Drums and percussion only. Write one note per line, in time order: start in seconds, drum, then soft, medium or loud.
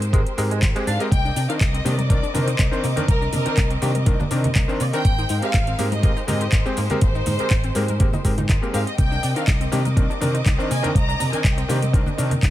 0.02 closed hi-hat medium
0.02 shaker soft
0.13 kick loud
0.13 closed hi-hat medium
0.13 shaker soft
0.26 closed hi-hat soft
0.26 shaker soft
0.38 open hi-hat loud
0.38 shaker medium
0.51 closed hi-hat medium
0.51 shaker soft
0.62 kick loud
0.62 clap loud
0.62 closed hi-hat medium
0.62 shaker soft
0.76 closed hi-hat soft
0.76 shaker soft
0.87 open hi-hat loud
0.87 shaker medium
1.00 closed hi-hat medium
1.00 shaker soft
1.12 kick loud
1.12 closed hi-hat medium
1.12 shaker soft
1.26 shaker soft
1.36 open hi-hat loud
1.36 shaker medium
1.50 closed hi-hat medium
1.50 shaker soft
1.61 kick loud
1.61 clap loud
1.61 closed hi-hat medium
1.61 shaker soft
1.74 closed hi-hat soft
1.74 shaker soft
1.86 open hi-hat loud
1.86 high conga medium
1.86 shaker medium
1.99 closed hi-hat medium
1.99 high conga medium
1.99 shaker soft
2.10 kick loud
2.10 closed hi-hat medium
2.10 shaker soft
2.24 shaker soft
2.35 open hi-hat loud
2.35 low conga medium
2.35 shaker medium
2.48 closed hi-hat medium
2.48 shaker soft
2.59 kick loud
2.59 clap loud
2.59 closed hi-hat medium
2.59 shaker soft
2.73 shaker soft
2.84 open hi-hat loud
2.84 shaker medium
2.97 closed hi-hat medium
2.97 low conga medium
2.97 shaker soft
3.08 kick loud
3.08 closed hi-hat medium
3.08 shaker soft
3.22 shaker soft
3.33 open hi-hat loud
3.33 low conga medium
3.33 shaker medium
3.46 closed hi-hat medium
3.46 shaker soft
3.57 kick loud
3.57 clap loud
3.57 closed hi-hat medium
3.57 shaker soft
3.71 closed hi-hat soft
3.71 shaker soft
3.82 open hi-hat loud
3.82 high conga medium
3.82 shaker medium
3.95 closed hi-hat medium
3.95 high conga medium
3.95 shaker soft
4.06 kick loud
4.06 closed hi-hat medium
4.06 shaker soft
4.20 low conga loud
4.20 shaker soft
4.31 open hi-hat loud
4.31 shaker medium
4.44 closed hi-hat medium
4.44 low conga loud
4.44 shaker soft
4.55 kick loud
4.55 clap loud
4.55 closed hi-hat medium
4.55 shaker soft
4.69 shaker soft
4.80 open hi-hat loud
4.80 shaker medium
4.93 closed hi-hat medium
4.93 shaker soft
5.05 kick loud
5.05 closed hi-hat medium
5.05 shaker soft
5.18 shaker soft
5.29 open hi-hat loud
5.29 shaker medium
5.42 closed hi-hat medium
5.42 shaker soft
5.54 kick loud
5.54 clap loud
5.54 closed hi-hat medium
5.54 shaker soft
5.67 closed hi-hat soft
5.67 shaker soft
5.79 open hi-hat loud
5.79 high conga medium
5.79 shaker medium
5.92 closed hi-hat medium
5.92 high conga medium
5.92 shaker soft
6.03 kick loud
6.03 closed hi-hat medium
6.03 shaker soft
6.17 shaker soft
6.28 open hi-hat loud
6.28 low conga medium
6.28 shaker medium
6.41 closed hi-hat medium
6.41 shaker soft
6.52 kick loud
6.52 clap loud
6.52 closed hi-hat medium
6.52 shaker soft
6.66 shaker soft
6.77 open hi-hat loud
6.77 shaker medium
6.90 closed hi-hat medium
6.90 low conga medium
6.90 shaker soft
7.01 kick loud
7.01 closed hi-hat medium
7.01 shaker soft
7.15 shaker soft
7.26 open hi-hat loud
7.26 low conga medium
7.26 shaker medium
7.39 closed hi-hat soft
7.39 shaker soft
7.50 kick loud
7.50 clap loud
7.50 closed hi-hat medium
7.50 shaker soft
7.64 closed hi-hat soft
7.64 shaker soft
7.75 open hi-hat loud
7.75 high conga medium
7.75 shaker medium
7.88 closed hi-hat medium
7.88 high conga medium
7.88 shaker soft
8.00 kick loud
8.00 closed hi-hat medium
8.00 shaker soft
8.13 low conga loud
8.13 shaker soft
8.25 kick medium
8.25 open hi-hat loud
8.25 shaker medium
8.38 closed hi-hat soft
8.38 low conga medium
8.38 shaker soft
8.49 kick loud
8.49 clap loud
8.49 closed hi-hat medium
8.49 shaker soft
8.63 shaker soft
8.74 open hi-hat loud
8.74 shaker medium
8.87 closed hi-hat soft
8.87 shaker soft
8.98 kick loud
8.98 closed hi-hat medium
8.98 shaker soft
9.12 shaker soft
9.23 open hi-hat loud
9.23 shaker medium
9.36 closed hi-hat medium
9.36 shaker soft
9.47 kick loud
9.47 clap loud
9.47 closed hi-hat medium
9.47 shaker soft
9.61 closed hi-hat soft
9.61 shaker soft
9.72 open hi-hat loud
9.72 high conga medium
9.72 shaker medium
9.85 closed hi-hat medium
9.85 high conga medium
9.85 shaker soft
9.97 kick loud
9.97 closed hi-hat medium
9.97 shaker soft
10.11 shaker soft
10.22 open hi-hat loud
10.22 low conga medium
10.22 shaker medium
10.35 closed hi-hat medium
10.35 shaker soft
10.46 kick loud
10.46 clap loud
10.46 closed hi-hat medium
10.46 shaker soft
10.60 shaker soft
10.71 open hi-hat loud
10.71 shaker medium
10.84 closed hi-hat medium
10.84 low conga medium
10.84 shaker soft
10.95 kick loud
10.95 closed hi-hat medium
10.95 shaker soft
11.09 shaker soft
11.20 open hi-hat loud
11.20 low conga medium
11.20 shaker medium
11.33 closed hi-hat medium
11.33 shaker soft
11.44 kick loud
11.44 clap loud
11.44 closed hi-hat medium
11.44 shaker soft
11.58 closed hi-hat soft
11.58 shaker soft
11.69 open hi-hat loud
11.69 high conga medium
11.69 shaker medium
11.82 closed hi-hat medium
11.82 high conga medium
11.82 shaker soft
11.94 kick loud
11.94 closed hi-hat medium
11.94 shaker soft
12.06 low conga medium
12.06 shaker soft
12.18 open hi-hat loud
12.18 shaker medium
12.31 closed hi-hat medium
12.31 low conga loud
12.31 shaker soft
12.43 kick loud
12.43 clap loud
12.43 closed hi-hat medium
12.43 shaker soft